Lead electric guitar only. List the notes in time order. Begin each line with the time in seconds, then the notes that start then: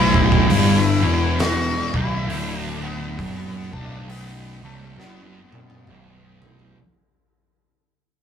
Already playing: E4
1.41 F#4
1.97 E4
2.62 D4
2.83 B3
3.73 D4
4.09 B3
4.65 A3
4.99 B3